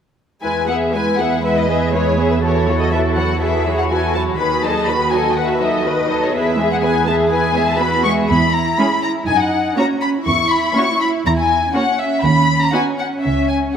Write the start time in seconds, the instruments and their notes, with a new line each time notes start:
0.43 double bass section E2, viola section G#3 E4, violin section B4 G#5
0.67 viola section B3 G#4, violin section G#4 E5 F#5
0.93 viola section G#3 E4, violin section B4 G#5
1.18 viola section B3 G#4, violin section G#4 E5 F#5
1.43 viola section G#3 E4, violin section B4 E5, cello section B4
1.57 violin section D#5
1.67 viola section B3 G#4, violin section G#4 E5
1.93 viola section G#3 E4, cello section G#4, violin section B4 C#5
2.17 viola section B3 G#4, violin section G#4 E5
2.31 violin section B4
2.42 viola section E3 F#4, violin section E4 A4 C#5, cello section A4
2.67 viola section F#3 E4, violin section F#4 C#5
2.80 violin section D#5
2.91 viola section E3 F#4, violin section E4 A4 E5
3.15 viola section F#3 E4, violin section F#4 C#5 F#5
3.40 viola section E3 F#4, violin section E4 A4 E5, cello section G#4
3.64 viola section F#3 E4, violin section F#4 C#5
3.77 violin section F#5
3.89 viola section E3 F#4, violin section E4 A4 G#5, cello section F#4
4.14 viola section F#3 E4, violin section F#4 C#5 A5
4.38 double bass section D#2, viola section D#3 F#4, cello section G#4, violin section B4 B5
4.63 viola section F#3 D#4, violin section A4 D#5 A5
4.87 viola section D#3 F#4, cello section F#4, violin section B4 B5
5.12 viola section F#3 D#4, violin section A4 D#5 G#5
5.36 viola section D#3 F#4, violin section B4 F#5
5.48 violin section E5
5.60 viola section F#3 D#4, violin section A4 D#5
5.84 viola section D#3 F#4, cello section B4, violin section B4 D#5
6.08 viola section F#3 D#4, violin section A4 D#5
6.24 violin section C#5
6.33 double bass section E2, viola section B3 E4, cello section G#4, violin section B4 E5
6.58 viola section G#3 B3, violin section G#4 E5
6.72 violin section F#5
6.82 viola section B3 E4, violin section B4 G#5
7.06 viola section G#3 B3, violin section G#4 E5 A5
7.30 viola section B3 E4, violin section B4 G#5
7.54 viola section G#3 B3, violin section G#4 E5
7.68 violin section A5
7.79 viola section B3 E4, cello section F#4, violin section B4 B5
8.04 viola section G#3 B3, violin section G#4 E5 C#6
8.28 double bass section E2, cello section E4, violin section B5
8.53 violin section A#5
8.78 viola section G#3 C#4, violin section G#4 C#5 B5
9.03 violin section A#5
9.27 double bass section F#2, cello section D#4, violin section G#5
9.39 violin section F#5
9.76 viola section A#3 C#4, cello section C#4, violin section F#4 C#5 A#5
10.02 violin section B5
10.25 double bass section E2, cello section E4, violin section C#6
10.50 violin section B5
10.74 viola section A#3 C#4, violin section F#4 C#5 C#6
11.01 violin section B5
11.25 double bass section E2, violin section A#5
11.38 violin section G#5
11.74 viola section A#3 C#4, cello section C#4, violin section F#4 C#5 F#5
11.99 violin section E5
12.22 double bass section D#2, violin section B5
12.62 violin section A#5
12.72 viola section B3 D#4, violin section F#4 F#5 G#5
12.99 violin section F#5
13.23 double bass section C#2, violin section E5
13.49 violin section G#5